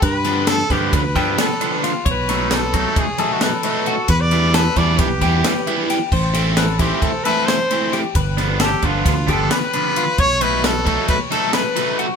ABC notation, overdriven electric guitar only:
X:1
M:9/8
L:1/8
Q:3/8=89
K:Gmix
V:1 name="Overdriven electric guitar"
z [D,F,B,D] z [D,F,B,D] z [D,F,B,D] z [D,F,B,D] z | z [B,,^F,A,^D] z [B,,F,A,D] z [B,,F,A,D] z [B,,F,A,D] z | z [E,G,B,E] z [E,G,B,E] z [E,G,B,E] z [E,G,B,E] z | z [E,A,CE] z [E,A,CE] z [E,A,CE] z [E,A,CE] z |
z [D,F,B,D] z [D,F,B,D] z [D,F,B,D] z [D,F,B,D] z | z [B,,^F,A,^D] z [B,,F,A,D] z [B,,F,A,D] z [B,,F,A,D] z |]